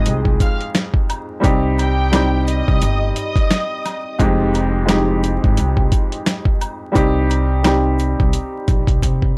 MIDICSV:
0, 0, Header, 1, 5, 480
1, 0, Start_track
1, 0, Key_signature, -4, "minor"
1, 0, Tempo, 689655
1, 1001, Time_signature, 4, 2, 24, 8
1, 6528, End_track
2, 0, Start_track
2, 0, Title_t, "Violin section"
2, 0, Program_c, 0, 48
2, 282, Note_on_c, 0, 77, 80
2, 287, Note_on_c, 0, 89, 68
2, 406, Note_off_c, 0, 77, 0
2, 409, Note_off_c, 0, 89, 0
2, 1243, Note_on_c, 0, 79, 90
2, 1248, Note_on_c, 0, 67, 68
2, 1694, Note_off_c, 0, 79, 0
2, 1697, Note_off_c, 0, 67, 0
2, 1716, Note_on_c, 0, 75, 90
2, 1722, Note_on_c, 0, 87, 64
2, 2170, Note_off_c, 0, 75, 0
2, 2174, Note_off_c, 0, 87, 0
2, 2202, Note_on_c, 0, 75, 88
2, 2208, Note_on_c, 0, 87, 77
2, 2894, Note_off_c, 0, 75, 0
2, 2896, Note_off_c, 0, 87, 0
2, 6528, End_track
3, 0, Start_track
3, 0, Title_t, "Upright piano"
3, 0, Program_c, 1, 0
3, 0, Control_c, 1, 64, 127
3, 0, Note_on_c, 1, 41, 78
3, 0, Note_on_c, 1, 56, 75
3, 0, Note_on_c, 1, 60, 68
3, 0, Note_on_c, 1, 63, 70
3, 0, Note_on_c, 1, 67, 91
3, 0, Note_on_c, 1, 68, 81
3, 194, Note_off_c, 1, 41, 0
3, 198, Note_off_c, 1, 56, 0
3, 201, Note_off_c, 1, 60, 0
3, 205, Note_off_c, 1, 63, 0
3, 208, Note_off_c, 1, 68, 0
3, 974, Note_on_c, 1, 55, 82
3, 983, Note_on_c, 1, 60, 84
3, 992, Note_on_c, 1, 63, 85
3, 1001, Note_off_c, 1, 67, 0
3, 1001, Note_on_c, 1, 67, 100
3, 1008, Control_c, 1, 64, 0
3, 1127, Control_c, 1, 64, 127
3, 1315, Note_off_c, 1, 55, 0
3, 1319, Note_off_c, 1, 60, 0
3, 1324, Note_off_c, 1, 63, 0
3, 1328, Note_off_c, 1, 67, 0
3, 1471, Note_on_c, 1, 55, 79
3, 1480, Note_on_c, 1, 60, 77
3, 1489, Note_on_c, 1, 63, 68
3, 1498, Note_on_c, 1, 67, 81
3, 2121, Note_off_c, 1, 55, 0
3, 2125, Note_off_c, 1, 60, 0
3, 2130, Note_off_c, 1, 63, 0
3, 2134, Note_off_c, 1, 67, 0
3, 2913, Note_on_c, 1, 41, 84
3, 2920, Note_on_c, 1, 56, 86
3, 2927, Note_on_c, 1, 60, 88
3, 2929, Control_c, 1, 64, 0
3, 2934, Note_on_c, 1, 63, 86
3, 2941, Note_on_c, 1, 67, 89
3, 3067, Control_c, 1, 64, 127
3, 3244, Note_off_c, 1, 41, 0
3, 3248, Note_off_c, 1, 56, 0
3, 3251, Note_off_c, 1, 60, 0
3, 3254, Note_off_c, 1, 63, 0
3, 3258, Note_off_c, 1, 67, 0
3, 3378, Note_on_c, 1, 41, 76
3, 3384, Note_on_c, 1, 56, 77
3, 3391, Note_on_c, 1, 60, 69
3, 3399, Note_on_c, 1, 63, 72
3, 3405, Note_on_c, 1, 67, 84
3, 4034, Note_off_c, 1, 41, 0
3, 4037, Note_off_c, 1, 56, 0
3, 4041, Note_off_c, 1, 60, 0
3, 4045, Note_off_c, 1, 63, 0
3, 4048, Note_off_c, 1, 67, 0
3, 4815, Note_on_c, 1, 55, 82
3, 4823, Note_on_c, 1, 60, 85
3, 4833, Note_on_c, 1, 63, 84
3, 4842, Note_on_c, 1, 67, 101
3, 4850, Control_c, 1, 64, 0
3, 4991, Control_c, 1, 64, 127
3, 5155, Note_off_c, 1, 55, 0
3, 5159, Note_off_c, 1, 60, 0
3, 5164, Note_off_c, 1, 63, 0
3, 5168, Note_off_c, 1, 67, 0
3, 5311, Note_on_c, 1, 55, 74
3, 5320, Note_on_c, 1, 60, 73
3, 5329, Note_on_c, 1, 63, 67
3, 5338, Note_on_c, 1, 67, 83
3, 5961, Note_off_c, 1, 55, 0
3, 5965, Note_off_c, 1, 60, 0
3, 5970, Note_off_c, 1, 63, 0
3, 5974, Note_off_c, 1, 67, 0
3, 6528, End_track
4, 0, Start_track
4, 0, Title_t, "Upright bass"
4, 0, Program_c, 2, 32
4, 45, Note_on_c, 2, 36, 93
4, 238, Note_off_c, 2, 36, 0
4, 1003, Note_on_c, 2, 36, 104
4, 1832, Note_off_c, 2, 36, 0
4, 1869, Note_on_c, 2, 36, 87
4, 1947, Note_off_c, 2, 36, 0
4, 1966, Note_on_c, 2, 31, 98
4, 2158, Note_off_c, 2, 31, 0
4, 2923, Note_on_c, 2, 29, 101
4, 3752, Note_off_c, 2, 29, 0
4, 3788, Note_on_c, 2, 32, 92
4, 3867, Note_off_c, 2, 32, 0
4, 3886, Note_on_c, 2, 36, 101
4, 4078, Note_off_c, 2, 36, 0
4, 4843, Note_on_c, 2, 36, 114
4, 5672, Note_off_c, 2, 36, 0
4, 5709, Note_on_c, 2, 36, 89
4, 5787, Note_off_c, 2, 36, 0
4, 6043, Note_on_c, 2, 34, 94
4, 6154, Note_off_c, 2, 34, 0
4, 6178, Note_on_c, 2, 36, 83
4, 6261, Note_off_c, 2, 36, 0
4, 6283, Note_on_c, 2, 48, 103
4, 6477, Note_off_c, 2, 48, 0
4, 6528, End_track
5, 0, Start_track
5, 0, Title_t, "Drums"
5, 38, Note_on_c, 9, 82, 66
5, 40, Note_on_c, 9, 42, 105
5, 107, Note_off_c, 9, 82, 0
5, 109, Note_off_c, 9, 42, 0
5, 175, Note_on_c, 9, 36, 92
5, 245, Note_off_c, 9, 36, 0
5, 280, Note_on_c, 9, 42, 73
5, 281, Note_on_c, 9, 36, 96
5, 281, Note_on_c, 9, 82, 57
5, 350, Note_off_c, 9, 36, 0
5, 350, Note_off_c, 9, 42, 0
5, 350, Note_off_c, 9, 82, 0
5, 422, Note_on_c, 9, 42, 57
5, 492, Note_off_c, 9, 42, 0
5, 520, Note_on_c, 9, 40, 88
5, 521, Note_on_c, 9, 82, 65
5, 524, Note_on_c, 9, 38, 109
5, 526, Note_on_c, 9, 42, 105
5, 590, Note_off_c, 9, 40, 0
5, 591, Note_off_c, 9, 82, 0
5, 594, Note_off_c, 9, 38, 0
5, 596, Note_off_c, 9, 42, 0
5, 652, Note_on_c, 9, 36, 95
5, 722, Note_off_c, 9, 36, 0
5, 763, Note_on_c, 9, 76, 65
5, 763, Note_on_c, 9, 82, 48
5, 764, Note_on_c, 9, 42, 74
5, 832, Note_off_c, 9, 76, 0
5, 832, Note_off_c, 9, 82, 0
5, 834, Note_off_c, 9, 42, 0
5, 1000, Note_on_c, 9, 82, 65
5, 1001, Note_on_c, 9, 36, 116
5, 1004, Note_on_c, 9, 42, 86
5, 1070, Note_off_c, 9, 36, 0
5, 1070, Note_off_c, 9, 82, 0
5, 1073, Note_off_c, 9, 42, 0
5, 1240, Note_on_c, 9, 76, 54
5, 1240, Note_on_c, 9, 82, 38
5, 1247, Note_on_c, 9, 42, 77
5, 1310, Note_off_c, 9, 76, 0
5, 1310, Note_off_c, 9, 82, 0
5, 1317, Note_off_c, 9, 42, 0
5, 1481, Note_on_c, 9, 40, 97
5, 1481, Note_on_c, 9, 76, 69
5, 1481, Note_on_c, 9, 82, 72
5, 1483, Note_on_c, 9, 42, 108
5, 1485, Note_on_c, 9, 38, 117
5, 1551, Note_off_c, 9, 40, 0
5, 1551, Note_off_c, 9, 76, 0
5, 1551, Note_off_c, 9, 82, 0
5, 1553, Note_off_c, 9, 42, 0
5, 1555, Note_off_c, 9, 38, 0
5, 1722, Note_on_c, 9, 82, 57
5, 1726, Note_on_c, 9, 42, 75
5, 1792, Note_off_c, 9, 82, 0
5, 1796, Note_off_c, 9, 42, 0
5, 1866, Note_on_c, 9, 36, 101
5, 1936, Note_off_c, 9, 36, 0
5, 1959, Note_on_c, 9, 82, 64
5, 1960, Note_on_c, 9, 42, 101
5, 2029, Note_off_c, 9, 82, 0
5, 2030, Note_off_c, 9, 42, 0
5, 2200, Note_on_c, 9, 42, 76
5, 2202, Note_on_c, 9, 82, 56
5, 2269, Note_off_c, 9, 42, 0
5, 2271, Note_off_c, 9, 82, 0
5, 2336, Note_on_c, 9, 36, 97
5, 2342, Note_on_c, 9, 42, 57
5, 2405, Note_off_c, 9, 36, 0
5, 2411, Note_off_c, 9, 42, 0
5, 2440, Note_on_c, 9, 40, 88
5, 2441, Note_on_c, 9, 82, 68
5, 2444, Note_on_c, 9, 38, 113
5, 2446, Note_on_c, 9, 42, 102
5, 2509, Note_off_c, 9, 40, 0
5, 2511, Note_off_c, 9, 82, 0
5, 2513, Note_off_c, 9, 38, 0
5, 2515, Note_off_c, 9, 42, 0
5, 2683, Note_on_c, 9, 76, 63
5, 2683, Note_on_c, 9, 82, 47
5, 2684, Note_on_c, 9, 38, 38
5, 2684, Note_on_c, 9, 42, 73
5, 2752, Note_off_c, 9, 76, 0
5, 2752, Note_off_c, 9, 82, 0
5, 2753, Note_off_c, 9, 42, 0
5, 2754, Note_off_c, 9, 38, 0
5, 2920, Note_on_c, 9, 36, 122
5, 2921, Note_on_c, 9, 82, 65
5, 2923, Note_on_c, 9, 42, 91
5, 2990, Note_off_c, 9, 36, 0
5, 2990, Note_off_c, 9, 82, 0
5, 2993, Note_off_c, 9, 42, 0
5, 3161, Note_on_c, 9, 76, 56
5, 3161, Note_on_c, 9, 82, 38
5, 3167, Note_on_c, 9, 42, 76
5, 3230, Note_off_c, 9, 76, 0
5, 3230, Note_off_c, 9, 82, 0
5, 3236, Note_off_c, 9, 42, 0
5, 3400, Note_on_c, 9, 40, 97
5, 3401, Note_on_c, 9, 76, 73
5, 3401, Note_on_c, 9, 82, 74
5, 3402, Note_on_c, 9, 42, 111
5, 3404, Note_on_c, 9, 38, 114
5, 3470, Note_off_c, 9, 40, 0
5, 3471, Note_off_c, 9, 76, 0
5, 3471, Note_off_c, 9, 82, 0
5, 3472, Note_off_c, 9, 42, 0
5, 3474, Note_off_c, 9, 38, 0
5, 3642, Note_on_c, 9, 82, 57
5, 3645, Note_on_c, 9, 42, 72
5, 3711, Note_off_c, 9, 82, 0
5, 3715, Note_off_c, 9, 42, 0
5, 3786, Note_on_c, 9, 36, 103
5, 3855, Note_off_c, 9, 36, 0
5, 3879, Note_on_c, 9, 42, 105
5, 3879, Note_on_c, 9, 82, 66
5, 3948, Note_off_c, 9, 42, 0
5, 3948, Note_off_c, 9, 82, 0
5, 4015, Note_on_c, 9, 36, 91
5, 4085, Note_off_c, 9, 36, 0
5, 4119, Note_on_c, 9, 42, 76
5, 4120, Note_on_c, 9, 36, 97
5, 4121, Note_on_c, 9, 82, 55
5, 4189, Note_off_c, 9, 42, 0
5, 4190, Note_off_c, 9, 36, 0
5, 4191, Note_off_c, 9, 82, 0
5, 4261, Note_on_c, 9, 42, 58
5, 4331, Note_off_c, 9, 42, 0
5, 4360, Note_on_c, 9, 40, 94
5, 4361, Note_on_c, 9, 82, 67
5, 4364, Note_on_c, 9, 38, 110
5, 4366, Note_on_c, 9, 42, 106
5, 4429, Note_off_c, 9, 40, 0
5, 4431, Note_off_c, 9, 82, 0
5, 4433, Note_off_c, 9, 38, 0
5, 4435, Note_off_c, 9, 42, 0
5, 4492, Note_on_c, 9, 36, 99
5, 4562, Note_off_c, 9, 36, 0
5, 4602, Note_on_c, 9, 76, 66
5, 4602, Note_on_c, 9, 82, 48
5, 4604, Note_on_c, 9, 42, 70
5, 4672, Note_off_c, 9, 76, 0
5, 4672, Note_off_c, 9, 82, 0
5, 4673, Note_off_c, 9, 42, 0
5, 4840, Note_on_c, 9, 36, 118
5, 4840, Note_on_c, 9, 82, 66
5, 4843, Note_on_c, 9, 42, 87
5, 4909, Note_off_c, 9, 82, 0
5, 4910, Note_off_c, 9, 36, 0
5, 4913, Note_off_c, 9, 42, 0
5, 5079, Note_on_c, 9, 76, 52
5, 5079, Note_on_c, 9, 82, 40
5, 5087, Note_on_c, 9, 42, 78
5, 5149, Note_off_c, 9, 76, 0
5, 5149, Note_off_c, 9, 82, 0
5, 5156, Note_off_c, 9, 42, 0
5, 5320, Note_on_c, 9, 40, 94
5, 5320, Note_on_c, 9, 76, 74
5, 5320, Note_on_c, 9, 82, 70
5, 5322, Note_on_c, 9, 42, 106
5, 5324, Note_on_c, 9, 38, 118
5, 5390, Note_off_c, 9, 40, 0
5, 5390, Note_off_c, 9, 76, 0
5, 5390, Note_off_c, 9, 82, 0
5, 5392, Note_off_c, 9, 42, 0
5, 5394, Note_off_c, 9, 38, 0
5, 5561, Note_on_c, 9, 82, 58
5, 5566, Note_on_c, 9, 42, 73
5, 5630, Note_off_c, 9, 82, 0
5, 5636, Note_off_c, 9, 42, 0
5, 5706, Note_on_c, 9, 36, 103
5, 5776, Note_off_c, 9, 36, 0
5, 5798, Note_on_c, 9, 82, 68
5, 5799, Note_on_c, 9, 42, 103
5, 5868, Note_off_c, 9, 82, 0
5, 5869, Note_off_c, 9, 42, 0
5, 6040, Note_on_c, 9, 42, 76
5, 6041, Note_on_c, 9, 36, 94
5, 6041, Note_on_c, 9, 82, 57
5, 6110, Note_off_c, 9, 36, 0
5, 6110, Note_off_c, 9, 42, 0
5, 6111, Note_off_c, 9, 82, 0
5, 6176, Note_on_c, 9, 36, 96
5, 6182, Note_on_c, 9, 42, 56
5, 6245, Note_off_c, 9, 36, 0
5, 6251, Note_off_c, 9, 42, 0
5, 6281, Note_on_c, 9, 36, 60
5, 6281, Note_on_c, 9, 82, 68
5, 6286, Note_on_c, 9, 42, 104
5, 6351, Note_off_c, 9, 36, 0
5, 6351, Note_off_c, 9, 82, 0
5, 6356, Note_off_c, 9, 42, 0
5, 6419, Note_on_c, 9, 36, 66
5, 6489, Note_off_c, 9, 36, 0
5, 6528, End_track
0, 0, End_of_file